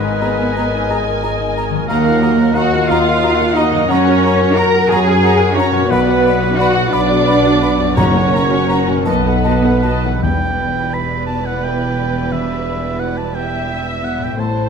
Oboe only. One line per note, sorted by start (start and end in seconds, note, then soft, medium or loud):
0.00 1.23 B4 medium
1.88 2.57 A#4 loud
2.56 2.91 F#5 loud
2.90 3.58 F5 loud
3.57 3.93 D#5 loud
3.91 4.59 C#5 loud
4.58 4.91 A#5 loud
4.90 5.55 G#5 loud
5.56 5.92 C#5 loud
5.91 6.59 B4 loud
6.57 6.95 F#5 loud
6.93 7.96 D5 loud
7.97 8.74 C#5 loud
9.08 10.18 B4 medium
10.23 10.95 G5 medium
10.94 11.26 B5 medium
11.26 11.47 A5 medium
11.46 11.65 F#5 medium
11.64 12.34 G5 medium
12.32 13.01 E5 medium
13.00 13.19 F#5 medium
13.18 13.36 A5 medium
13.35 13.86 G5 medium
13.89 14.06 E5 medium
14.04 14.25 F#5 medium
14.24 14.41 G5 medium
14.40 14.69 A5 medium